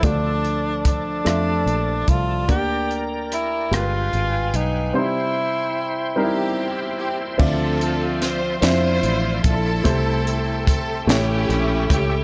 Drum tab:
CC |------|------|------|x-----|
HH |xxxxxx|xxxxxx|------|-xxxxx|
SD |--rr--|--rr--|------|--oo--|
BD |o-o--o|o-----|------|o----o|

CC |------|
HH |xxxxxx|
SD |---o--|
BD |o-o--o|